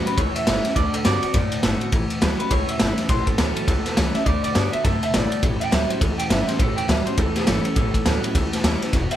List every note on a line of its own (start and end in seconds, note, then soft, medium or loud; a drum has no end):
0.00 0.15 A2 medium
0.00 0.16 A2 medium
0.00 0.16 F#3 medium
0.06 0.18 C#4 soft
0.06 0.17 E4 medium
0.06 0.17 B4 medium
0.06 ride medium
0.17 0.32 C#2 loud
0.17 0.45 A2 medium
0.17 0.45 E3 medium
0.17 0.35 C#5 medium
0.17 kick loud
0.17 ride medium
0.35 0.75 E5 loud
0.35 ride medium
0.47 0.61 G1 loud
0.47 0.74 A2 medium
0.47 0.64 E3 medium
0.47 0.74 E3 loud
0.47 0.64 G3 medium
0.47 0.65 C#4 loud
0.47 0.63 E4 loud
0.47 snare loud
0.47 ride loud
0.65 0.77 C#4 medium
0.65 0.76 E4 medium
0.65 snare soft
0.65 ride medium
0.76 0.90 D2 medium
0.76 1.03 D3 medium
0.76 1.03 A3 medium
0.76 0.93 D5 medium
0.76 kick loud
0.76 ride medium
0.93 1.05 A4 medium
0.93 muted upright bass stroke medium
0.93 ride medium
1.04 1.20 G2 medium
1.04 1.22 D3 medium
1.04 1.32 D3 medium
1.04 1.23 A3 medium
1.04 1.33 B3 medium
1.04 1.23 C4 loud
1.04 1.21 F#4 loud
1.04 1.62 D5 loud
1.04 snare loud
1.04 ride medium
1.23 1.35 C4 medium
1.23 1.34 F#4 medium
1.23 muted upright bass stroke medium
1.23 ride medium
1.34 1.48 F#2 medium
1.34 1.91 A2 loud
1.34 1.61 D3 medium
1.34 1.62 A3 medium
1.34 kick loud
1.34 snare soft
1.34 ride medium
1.52 muted upright bass stroke medium
1.52 ride medium
1.63 1.78 G1 medium
1.63 1.80 D3 medium
1.63 1.91 D3 medium
1.63 1.81 A3 medium
1.63 1.91 A3 medium
1.63 1.81 C4 medium
1.63 1.79 F#4 loud
1.63 snare loud
1.63 ride medium
1.80 1.93 C4 medium
1.80 1.92 F#4 medium
1.80 muted upright bass stroke medium
1.80 ride medium
1.92 2.07 A1 medium
1.92 2.49 A2 medium
1.92 2.20 A2 medium
1.92 2.20 E3 medium
1.92 kick loud
1.92 ride medium
2.10 ride medium
2.21 2.36 D2 medium
2.21 2.49 A2 medium
2.21 2.39 E3 medium
2.21 2.49 F#3 medium
2.21 2.39 G3 medium
2.21 2.40 C#4 loud
2.21 2.38 E4 medium
2.21 snare loud
2.21 ride medium
2.39 2.52 C#4 soft
2.39 2.51 E4 medium
2.39 2.51 B4 medium
2.39 ride medium
2.51 2.65 C#2 medium
2.51 3.08 E2 loud
2.51 2.78 A2 medium
2.51 2.79 E3 loud
2.51 2.68 C#5 medium
2.51 kick loud
2.51 ride loud
2.68 3.08 E5 loud
2.68 ride medium
2.80 2.95 G1 loud
2.80 3.07 A2 medium
2.80 2.97 E3 medium
2.80 3.08 E3 loud
2.80 2.98 G3 medium
2.80 2.98 C#4 medium
2.80 2.97 E4 medium
2.80 snare loud
2.80 ride medium
2.98 3.10 C#4 soft
2.98 3.09 E4 medium
2.98 muted upright bass stroke medium
2.98 snare soft
2.98 ride medium
3.09 3.23 A1 medium
3.09 3.37 A2 medium
3.09 3.66 A2 medium
3.09 3.37 E3 medium
3.09 3.27 C5 medium
3.09 kick loud
3.09 snare soft
3.09 ride medium
3.27 3.37 A4 medium
3.27 kick medium
3.27 ride medium
3.38 3.53 D2 medium
3.38 3.66 A2 medium
3.38 3.67 E3 loud
3.38 3.66 F#3 medium
3.38 3.67 C#4 medium
3.38 3.67 E4 medium
3.38 3.95 A4 loud
3.38 snare loud
3.38 ride medium
3.56 ride medium
3.68 3.82 C#2 medium
3.68 4.24 E2 medium
3.68 3.95 A2 medium
3.68 3.95 E3 medium
3.68 kick loud
3.68 snare soft
3.68 ride medium
3.86 muted upright bass stroke medium
3.86 snare soft
3.86 ride medium
3.97 4.12 C#2 loud
3.97 4.24 A2 medium
3.97 4.14 E3 medium
3.97 4.24 E3 medium
3.97 4.15 G3 medium
3.97 4.15 C#4 loud
3.97 4.14 E4 loud
3.97 snare loud
3.97 ride medium
4.15 4.27 C#4 medium
4.15 4.26 E4 medium
4.15 4.26 E5 medium
4.15 muted upright bass stroke medium
4.15 snare soft
4.15 ride medium
4.26 4.40 D2 medium
4.26 4.53 D3 medium
4.26 4.53 A3 medium
4.26 4.43 D5 medium
4.26 kick loud
4.26 ride medium
4.44 4.72 D5 medium
4.44 muted upright bass stroke medium
4.44 ride medium
4.55 4.70 G2 medium
4.55 4.83 D3 medium
4.55 4.83 A3 medium
4.55 4.83 B3 medium
4.55 4.84 F#4 medium
4.55 snare loud
4.55 ride medium
4.73 4.84 E5 medium
4.73 muted upright bass stroke medium
4.73 ride medium
4.84 4.99 F#2 loud
4.84 5.13 C3 medium
4.84 5.12 D3 medium
4.84 5.12 A3 loud
4.84 5.02 A5 medium
4.84 kick loud
4.84 snare soft
4.84 ride medium
5.03 5.14 E5 loud
5.03 muted upright bass stroke medium
5.03 ride medium
5.14 5.28 G#1 loud
5.14 5.42 G2 loud
5.14 5.41 D3 medium
5.14 5.41 A3 loud
5.14 5.42 D5 loud
5.14 snare loud
5.14 ride loud
5.32 muted upright bass stroke medium
5.32 ride medium
5.43 5.57 A1 medium
5.43 5.99 A2 loud
5.43 5.70 A2 medium
5.43 5.70 E3 loud
5.43 kick loud
5.43 ride medium
5.60 5.72 G5 medium
5.60 muted upright bass stroke medium
5.60 ride medium
5.71 5.86 D2 medium
5.71 5.99 A2 medium
5.71 5.89 E3 medium
5.71 5.99 F#3 medium
5.71 5.89 G3 medium
5.71 5.90 C#4 medium
5.71 5.89 E4 loud
5.71 5.89 E5 medium
5.71 snare loud
5.71 ride medium
5.89 6.02 C#4 soft
5.89 6.01 E4 medium
5.89 6.00 C5 medium
5.89 muted upright bass stroke medium
5.89 ride medium
6.00 6.16 C#2 medium
6.00 6.57 E2 medium
6.00 6.28 A2 medium
6.00 6.29 E3 medium
6.00 6.18 A4 loud
6.00 kick loud
6.00 ride medium
6.18 6.29 G5 medium
6.18 muted upright bass stroke medium
6.18 ride medium
6.30 6.44 G1 loud
6.30 6.58 A2 medium
6.30 6.48 E3 medium
6.30 6.58 E3 loud
6.30 6.48 G3 medium
6.30 6.48 C#4 loud
6.30 6.47 E4 loud
6.30 6.47 E5 medium
6.30 snare loud
6.30 ride medium
6.47 6.60 C#4 medium
6.47 6.59 E4 medium
6.47 6.59 C5 medium
6.47 muted upright bass stroke medium
6.47 snare soft
6.47 ride medium
6.59 6.74 A1 medium
6.59 7.16 A2 medium
6.59 6.87 A2 medium
6.59 6.87 E3 medium
6.59 6.77 A4 medium
6.59 kick loud
6.59 ride medium
6.76 6.88 G5 medium
6.76 ride medium
6.88 7.03 D2 medium
6.88 7.16 A2 medium
6.88 7.06 E3 loud
6.88 7.16 F#3 medium
6.88 7.06 G3 loud
6.88 7.07 C#4 medium
6.88 7.05 E4 loud
6.88 7.06 E5 medium
6.88 snare loud
6.88 ride medium
7.06 7.18 C#4 medium
7.06 7.17 E4 medium
7.06 7.17 C5 medium
7.06 muted upright bass stroke medium
7.06 ride medium
7.18 7.32 C#2 medium
7.18 7.74 E2 medium
7.18 7.45 A2 medium
7.18 7.45 E3 medium
7.18 7.35 A4 loud
7.18 kick loud
7.18 ride medium
7.36 8.21 A4 loud
7.36 snare soft
7.36 ride medium
7.47 7.61 G1 medium
7.47 7.74 A2 loud
7.47 7.64 E3 medium
7.47 7.74 E3 loud
7.47 7.64 G3 loud
7.47 7.65 C#4 loud
7.47 7.63 E4 loud
7.47 snare loud
7.47 ride medium
7.64 7.77 C#4 medium
7.64 7.76 E4 medium
7.64 muted upright bass stroke medium
7.64 ride medium
7.76 7.91 A1 medium
7.76 8.33 A2 medium
7.76 8.03 A2 medium
7.76 8.04 E3 loud
7.76 kick loud
7.76 ride medium
7.94 kick medium
7.94 ride medium
8.05 8.20 D2 medium
8.05 8.32 A2 medium
8.05 8.23 E3 medium
8.05 8.33 F#3 medium
8.05 8.23 G3 medium
8.05 8.23 C#4 medium
8.05 8.22 E4 loud
8.05 snare loud
8.05 ride medium
8.23 8.35 C#4 medium
8.23 8.34 E4 medium
8.23 ride medium
8.35 8.49 C#2 medium
8.35 8.91 E2 loud
8.35 8.62 A2 medium
8.35 8.62 E3 medium
8.35 kick loud
8.35 snare soft
8.35 ride loud
8.52 muted upright bass stroke medium
8.52 snare soft
8.52 ride medium
8.64 8.78 D#2 loud
8.64 8.91 A2 medium
8.64 8.81 E3 medium
8.64 8.91 E3 loud
8.64 8.81 G3 medium
8.64 8.82 C#4 loud
8.64 8.81 E4 loud
8.64 snare loud
8.64 ride medium
8.82 8.94 C#4 medium
8.82 8.93 E4 medium
8.82 snare soft
8.82 ride medium
8.93 9.07 E1 medium
8.93 9.16 E2 medium
8.93 9.16 B2 medium
8.93 kick loud
8.93 snare soft
8.93 ride medium
9.11 9.16 G5 medium
9.11 muted upright bass stroke medium
9.11 ride medium